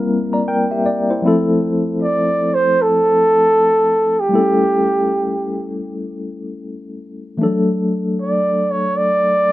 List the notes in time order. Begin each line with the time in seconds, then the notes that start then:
Already playing: G3 A#3 C4 E4 A#4
0.33 D5 A#5
0.48 A#4 G5
0.71 G4 E5
0.86 D5
1.10 E4 C5
1.22 F3 A3 C4
1.26 E4 A4
2.03 D5
2.54 C5
2.82 A4
4.20 G4
4.29 G3 A3 B3
4.34 E4 A4
4.39 C#4
7.38 E3 A3
7.42 F#3 D4 A4
8.21 D5
8.71 C#5
8.97 D5